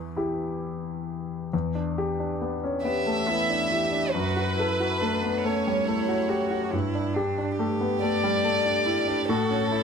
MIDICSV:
0, 0, Header, 1, 4, 480
1, 0, Start_track
1, 0, Tempo, 911854
1, 803, Time_signature, 6, 3, 24, 8
1, 803, Tempo, 875912
1, 1763, Tempo, 859599
1, 5422, End_track
2, 0, Start_track
2, 0, Title_t, "Violin section"
2, 0, Program_c, 0, 48
2, 1524, Note_on_c, 0, 76, 66
2, 2224, Note_off_c, 0, 76, 0
2, 2241, Note_on_c, 0, 71, 74
2, 2966, Note_on_c, 0, 73, 56
2, 2967, Note_off_c, 0, 71, 0
2, 3688, Note_off_c, 0, 73, 0
2, 4411, Note_on_c, 0, 74, 76
2, 5101, Note_off_c, 0, 74, 0
2, 5123, Note_on_c, 0, 69, 74
2, 5422, Note_off_c, 0, 69, 0
2, 5422, End_track
3, 0, Start_track
3, 0, Title_t, "Cello"
3, 0, Program_c, 1, 42
3, 0, Note_on_c, 1, 52, 52
3, 80, Note_off_c, 1, 52, 0
3, 1528, Note_on_c, 1, 67, 46
3, 1767, Note_on_c, 1, 64, 48
3, 1775, Note_off_c, 1, 67, 0
3, 2009, Note_on_c, 1, 67, 49
3, 2017, Note_off_c, 1, 64, 0
3, 2249, Note_off_c, 1, 67, 0
3, 2254, Note_on_c, 1, 66, 53
3, 2483, Note_off_c, 1, 66, 0
3, 2487, Note_on_c, 1, 64, 51
3, 2727, Note_on_c, 1, 62, 45
3, 2735, Note_off_c, 1, 64, 0
3, 2974, Note_on_c, 1, 61, 47
3, 2983, Note_off_c, 1, 62, 0
3, 3206, Note_on_c, 1, 64, 54
3, 3214, Note_off_c, 1, 61, 0
3, 3442, Note_on_c, 1, 66, 51
3, 3450, Note_off_c, 1, 64, 0
3, 3680, Note_on_c, 1, 64, 58
3, 3688, Note_off_c, 1, 66, 0
3, 3918, Note_on_c, 1, 62, 51
3, 3927, Note_off_c, 1, 64, 0
3, 4162, Note_off_c, 1, 62, 0
3, 4165, Note_on_c, 1, 67, 60
3, 5119, Note_on_c, 1, 66, 68
3, 5127, Note_off_c, 1, 67, 0
3, 5353, Note_off_c, 1, 66, 0
3, 5356, Note_on_c, 1, 64, 58
3, 5422, Note_off_c, 1, 64, 0
3, 5422, End_track
4, 0, Start_track
4, 0, Title_t, "Grand piano"
4, 0, Program_c, 2, 0
4, 0, Control_c, 2, 64, 127
4, 0, Note_on_c, 2, 40, 40
4, 87, Note_on_c, 2, 64, 24
4, 91, Note_on_c, 2, 67, 30
4, 780, Note_off_c, 2, 40, 0
4, 784, Note_off_c, 2, 64, 0
4, 786, Note_off_c, 2, 67, 0
4, 808, Note_on_c, 2, 40, 40
4, 813, Control_c, 2, 64, 0
4, 901, Control_c, 2, 64, 127
4, 927, Note_on_c, 2, 62, 36
4, 1053, Note_on_c, 2, 67, 37
4, 1118, Note_off_c, 2, 62, 0
4, 1172, Note_on_c, 2, 62, 33
4, 1242, Note_off_c, 2, 67, 0
4, 1290, Note_on_c, 2, 59, 31
4, 1361, Note_off_c, 2, 62, 0
4, 1411, Note_on_c, 2, 61, 28
4, 1480, Note_off_c, 2, 59, 0
4, 1527, Note_on_c, 2, 59, 35
4, 1528, Note_off_c, 2, 61, 0
4, 1647, Note_on_c, 2, 57, 33
4, 1717, Note_off_c, 2, 59, 0
4, 1765, Note_off_c, 2, 57, 0
4, 1766, Note_on_c, 2, 59, 31
4, 1887, Note_on_c, 2, 62, 38
4, 1958, Note_off_c, 2, 59, 0
4, 2001, Note_on_c, 2, 64, 30
4, 2079, Note_off_c, 2, 62, 0
4, 2121, Note_on_c, 2, 62, 36
4, 2124, Note_off_c, 2, 64, 0
4, 2227, Note_off_c, 2, 40, 0
4, 2244, Note_off_c, 2, 62, 0
4, 2247, Note_on_c, 2, 42, 46
4, 2258, Control_c, 2, 64, 0
4, 2359, Control_c, 2, 64, 127
4, 2371, Note_on_c, 2, 66, 34
4, 2498, Note_on_c, 2, 69, 38
4, 2562, Note_off_c, 2, 66, 0
4, 2615, Note_on_c, 2, 66, 36
4, 2686, Note_off_c, 2, 69, 0
4, 2734, Note_on_c, 2, 57, 36
4, 2804, Note_off_c, 2, 66, 0
4, 2855, Note_on_c, 2, 59, 31
4, 2924, Note_off_c, 2, 57, 0
4, 2972, Note_off_c, 2, 59, 0
4, 2976, Note_on_c, 2, 57, 39
4, 3099, Note_on_c, 2, 55, 33
4, 3165, Note_off_c, 2, 57, 0
4, 3214, Note_off_c, 2, 55, 0
4, 3214, Note_on_c, 2, 57, 39
4, 3331, Note_on_c, 2, 66, 36
4, 3404, Note_off_c, 2, 57, 0
4, 3447, Note_on_c, 2, 67, 34
4, 3522, Note_off_c, 2, 66, 0
4, 3567, Note_on_c, 2, 66, 39
4, 3568, Note_off_c, 2, 67, 0
4, 3668, Note_off_c, 2, 42, 0
4, 3688, Note_off_c, 2, 66, 0
4, 3691, Note_on_c, 2, 43, 47
4, 3701, Control_c, 2, 64, 0
4, 3791, Control_c, 2, 64, 127
4, 3813, Note_on_c, 2, 62, 38
4, 3932, Note_on_c, 2, 67, 43
4, 4004, Note_off_c, 2, 62, 0
4, 4055, Note_on_c, 2, 62, 40
4, 4123, Note_off_c, 2, 67, 0
4, 4172, Note_on_c, 2, 57, 44
4, 4244, Note_off_c, 2, 62, 0
4, 4292, Note_on_c, 2, 59, 37
4, 4362, Note_off_c, 2, 57, 0
4, 4409, Note_off_c, 2, 59, 0
4, 4412, Note_on_c, 2, 57, 38
4, 4532, Note_on_c, 2, 55, 37
4, 4600, Note_off_c, 2, 57, 0
4, 4648, Note_off_c, 2, 55, 0
4, 4648, Note_on_c, 2, 57, 45
4, 4764, Note_on_c, 2, 62, 43
4, 4837, Note_off_c, 2, 57, 0
4, 4881, Note_on_c, 2, 64, 39
4, 4955, Note_off_c, 2, 62, 0
4, 5001, Note_off_c, 2, 64, 0
4, 5003, Note_on_c, 2, 62, 47
4, 5100, Note_off_c, 2, 43, 0
4, 5120, Note_on_c, 2, 45, 55
4, 5121, Note_off_c, 2, 62, 0
4, 5131, Control_c, 2, 64, 0
4, 5227, Control_c, 2, 64, 127
4, 5240, Note_on_c, 2, 61, 43
4, 5361, Note_on_c, 2, 64, 42
4, 5422, Note_off_c, 2, 45, 0
4, 5422, Note_off_c, 2, 61, 0
4, 5422, Note_off_c, 2, 64, 0
4, 5422, End_track
0, 0, End_of_file